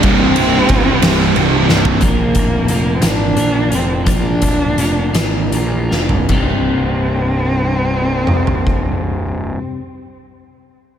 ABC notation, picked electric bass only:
X:1
M:6/8
L:1/8
Q:3/8=54
K:Cm
V:1 name="Picked electric bass" clef=bass
C,,,2 C,,,2 C,,, C,,, | B,,, D,,, F,,, A,,, B,,, F,,, | B,,, D,,, F,,, A,,, B,,, F,,, | C,,,6- |
C,,,6 |]